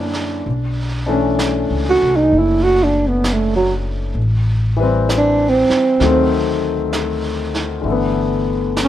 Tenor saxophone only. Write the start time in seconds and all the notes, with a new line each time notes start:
Already playing: A#3
1.90 F#4
2.16 D#4
2.39 E4
2.63 F#4
2.83 D4
3.08 B3
3.33 A3
3.56 F#3
5.18 D4
5.49 C4
8.84 C#4